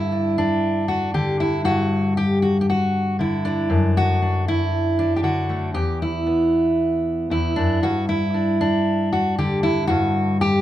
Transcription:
0.00 1.63 G2 medium
0.00 1.13 D3 medium
0.00 0.88 E4 loud
0.12 0.38 D4 soft
0.38 1.40 D4 medium
0.88 1.14 F#4 medium
1.14 3.18 D3 medium
1.14 1.40 G4 medium
1.40 1.65 E4 loud
1.64 3.67 G2 medium
1.64 2.17 F#4 loud
2.17 2.42 G4 loud
2.42 2.61 F#4 medium
2.61 2.68 G4 medium
2.70 3.20 F#4 medium
3.19 5.22 D3 medium
3.19 3.71 E4 medium
3.45 4.21 D4 medium
3.70 5.72 F#2 medium
3.97 4.48 F#4 loud
4.22 4.98 D4 soft
4.48 5.16 E4 medium
4.99 5.69 D4 medium
5.16 5.23 G4 medium
5.23 5.75 D3 medium
5.23 5.74 F#4 medium
5.49 5.72 A3 soft
5.74 7.29 E2 medium
5.74 6.01 G4 loud
6.02 7.30 E4 medium
6.27 7.56 B3 soft
7.30 7.57 E2 medium
7.30 7.83 E4 medium
7.56 7.82 F#2 medium
7.56 7.82 D4 medium
7.82 9.87 G2 medium
7.82 8.08 F#4 loud
8.09 9.12 E4 medium
8.34 8.60 D4 soft
8.61 9.64 D4 medium
9.13 9.38 F#4 medium
9.38 10.62 D3 medium
9.38 9.63 G4 medium
9.63 9.87 E4 loud
9.87 10.62 G2 medium
9.87 10.40 F#4 loud
10.41 10.62 G4 loud

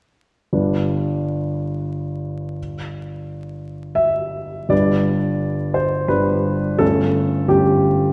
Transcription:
0.53 4.67 G1 soft
0.53 4.68 G3 soft
0.53 4.68 D4 soft
0.53 4.68 B4 soft
3.95 4.70 E5 medium
4.69 6.07 G1 soft
4.69 6.07 G3 soft
4.69 6.07 D4 soft
4.69 6.07 B4 soft
4.69 5.76 D5 soft
5.74 6.10 C5 soft
6.08 6.77 G1 soft
6.08 6.77 G3 soft
6.08 6.78 D4 soft
6.08 6.79 B4 medium
6.79 7.47 G1 soft
6.79 7.47 A3 soft
6.79 7.48 C#4 soft
6.79 7.48 A4 medium
7.48 8.13 G1 soft
7.48 8.13 A3 soft
7.48 8.13 C#4 soft
7.48 8.13 G4 soft
7.48 8.13 A4 soft

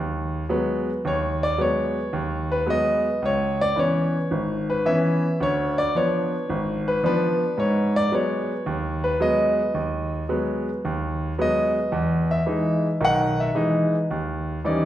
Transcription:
0.00 0.43 D#2 medium
0.49 0.89 F#3 medium
0.49 0.89 G#3 soft
0.49 0.89 B3 medium
1.05 1.52 D#2 medium
1.05 1.42 C#5 medium
1.43 1.59 D5 medium
1.58 1.97 F#3 soft
1.58 1.97 G#3 soft
1.58 1.98 B3 medium
1.58 2.48 C#5 medium
2.13 2.60 D#2 medium
2.52 2.67 B4 medium
2.66 3.06 F#3 soft
2.66 3.06 G#3 soft
2.66 3.06 B3 medium
2.70 3.57 D#5 medium
3.22 3.69 C#2 medium
3.22 3.60 C#5 medium
3.61 3.77 D5 medium
3.76 4.15 E3 soft
3.76 4.15 B3 soft
3.76 4.16 C#4 soft
3.76 4.66 C#5 medium
4.31 4.78 G#1 medium
4.70 4.85 B4 medium
4.85 5.25 E3 medium
4.85 5.24 B3 soft
4.85 5.25 C#4 medium
4.85 5.74 E5 medium
5.40 5.87 D2 medium
5.40 5.78 C#5 medium
5.78 5.94 D5 medium
5.95 6.34 F3 soft
5.95 6.34 B3 soft
5.95 6.34 D4 medium
5.95 6.83 C#5 medium
6.49 6.96 G#1 medium
6.88 7.03 B4 medium
7.04 7.42 F3 medium
7.04 7.42 B3 soft
7.04 7.43 D4 medium
7.04 7.92 B4 medium
7.58 8.05 G#2 medium
7.58 7.95 C#5 medium
7.96 8.12 D5 loud
8.12 8.51 F#3 soft
8.12 8.51 G#3 soft
8.12 8.51 B3 medium
8.12 9.01 C#5 medium
8.66 9.13 D#2 medium
9.04 9.20 B4 medium
9.20 9.59 F#3 medium
9.20 9.60 G#3 soft
9.20 9.60 B3 medium
9.20 10.09 D#5 medium
9.74 10.22 D#2 medium
10.29 10.68 F#3 soft
10.29 10.68 G#3 soft
10.29 10.68 B3 medium
10.85 11.31 D#2 medium
11.38 11.77 F#3 soft
11.38 11.77 G#3 soft
11.38 11.77 B3 medium
11.38 12.27 D#5 medium
11.92 12.39 E2 medium
12.31 12.97 E5 medium
12.46 12.85 E3 soft
12.46 12.86 G#3 soft
12.46 12.86 D#4 medium
13.01 13.48 B1 medium
13.01 13.48 D#3 medium
13.05 13.39 F#5 medium
13.40 13.55 E5 medium
13.55 13.94 E3 soft
13.55 13.94 G#3 soft
13.55 13.94 D#4 medium
14.11 14.57 D#2 medium
14.65 14.85 E3 soft
14.65 14.85 G3 soft
14.65 14.85 C#4 soft
14.65 14.85 D#4 medium
14.65 14.85 D5 medium

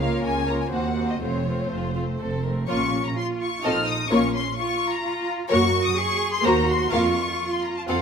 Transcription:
0.00 0.19 C#2 medium
0.00 0.19 C#3 medium
0.00 0.46 A#3 soft
0.00 0.46 F4 soft
0.00 0.46 A#4 soft
0.00 0.46 C#5 soft
0.00 0.24 F5 medium
0.24 0.66 C#2 soft
0.24 0.66 C#3 medium
0.24 0.47 G#5 medium
0.47 0.71 A#3 soft
0.47 0.71 F4 soft
0.47 0.71 A#4 soft
0.47 0.71 C#5 soft
0.47 0.60 A#5 soft
0.61 0.65 G#5 medium
0.71 1.15 D#2 soft
0.71 0.95 A#3 soft
0.71 0.95 C4 soft
0.71 0.95 F#4 soft
0.71 0.95 C5 soft
0.71 1.08 F#5 medium
0.96 1.20 A#3 soft
0.96 1.19 C4 soft
0.96 1.21 F#4 soft
0.96 1.21 C5 soft
1.10 1.21 D#5 soft
1.20 1.65 F1 soft
1.20 1.65 F2 soft
1.20 1.45 A3 soft
1.20 1.45 C4 soft
1.20 1.45 F4 soft
1.20 1.45 C5 soft
1.20 1.70 C#5 medium
1.46 1.95 A3 soft
1.46 1.95 C4 soft
1.46 1.66 F4 soft
1.46 1.66 C5 soft
1.71 2.15 F1 soft
1.71 2.15 F2 soft
1.71 1.94 F4 soft
1.71 2.45 C5 soft
1.96 2.44 A3 soft
1.96 2.44 C4 soft
1.96 2.04 F4 soft
2.21 2.64 F1 soft
2.21 2.64 F2 soft
2.21 2.44 A4 soft
2.44 2.69 A3 soft
2.44 2.68 C4 soft
2.44 2.68 A#4 soft
2.68 3.09 A#1 medium
2.68 2.91 A#3 soft
2.68 3.14 C#4 soft
2.68 2.91 F4 soft
2.68 2.91 F4 medium
2.68 2.91 C#5 soft
2.68 3.02 C#6 medium
3.05 3.17 A#5 medium
3.17 3.64 F4 medium
3.17 3.25 C6 medium
3.41 3.64 C#6 medium
3.63 4.03 A#1 medium
3.63 3.86 C4 medium
3.63 4.10 D#4 medium
3.63 3.86 F4 medium
3.63 3.85 A4 medium
3.63 3.85 D#5 soft
3.63 3.88 F6 medium
3.87 4.10 D#6 medium
4.10 4.50 A#1 medium
4.10 4.32 A#3 medium
4.10 4.57 C#4 medium
4.10 4.32 F4 medium
4.10 4.32 A#4 soft
4.10 4.32 C#5 medium
4.10 4.34 C#6 medium
4.34 4.57 C6 medium
4.57 5.02 F4 medium
4.57 4.91 C#6 medium
4.92 5.27 A#5 medium
5.03 5.49 F4 medium
5.49 5.90 F#2 medium
5.49 5.72 A#3 medium
5.49 5.96 F#4 medium
5.49 5.73 F#4 medium
5.49 5.71 A#4 medium
5.49 5.71 C#5 medium
5.49 5.83 C#6 medium
5.86 5.97 D#6 medium
5.97 6.44 G#4 medium
5.97 6.33 C#6 loud
6.33 6.44 C6 medium
6.43 6.84 D#2 medium
6.43 6.66 A#3 medium
6.43 6.66 F#4 medium
6.43 6.92 F#4 medium
6.43 6.66 A#4 medium
6.43 6.66 C5 medium
6.43 6.69 A#5 medium
6.69 6.92 C6 medium
6.90 7.31 F2 medium
6.90 7.14 A#3 medium
6.90 7.14 F4 medium
6.90 8.02 F4 medium
6.90 7.13 A#4 medium
6.90 7.13 F5 medium
6.90 7.50 C#6 medium
7.53 7.64 C6 medium
7.64 7.76 A#5 medium
7.77 7.81 A5 medium
7.87 8.02 F2 medium
7.87 8.02 C4 soft
7.87 8.02 F4 soft
7.87 8.02 A4 soft
7.87 8.02 F5 soft
7.87 7.99 F#5 medium

